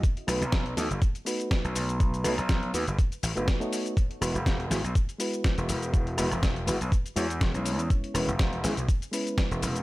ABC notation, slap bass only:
X:1
M:4/4
L:1/16
Q:"Swing 16ths" 1/4=122
K:Bmix
V:1 name="Slap bass" clef=bass
z2 B,,, B,,,3 D,, F,,, z4 z B,,, B,,,2- | B,,,2 B,,, B,,,3 D,, F,,, z2 A,,, F,,, z4 | z2 E,,, E,,,3 G,,, B,,, z4 z E,,, E,,,2- | E,,,2 E,,, E,,,3 G,,, B,,, z2 E,,2 E,,, B,,,2 E,, |
z2 E,,, E,,,3 G,,, B,,, z4 z E,,, E,,,2 |]